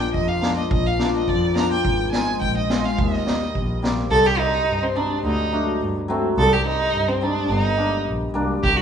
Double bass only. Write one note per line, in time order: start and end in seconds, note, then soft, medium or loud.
0.14 0.48 F2 medium
0.71 1.05 A#1 medium
1.28 1.62 F2 medium
1.85 2.19 G#1 medium
2.41 2.75 A#1 medium
2.98 3.32 D#2 medium
3.55 3.89 A#1 medium
4.11 4.28 C2 loud
4.68 4.85 G2 medium
5.24 5.41 D2 medium
5.81 5.98 G2 medium
6.37 6.54 C2 loud
6.93 7.10 G2 medium
7.49 7.67 G1 loud
8.06 8.31 A#1 medium
8.34 8.60 C2 medium
8.63 8.80 C2 loud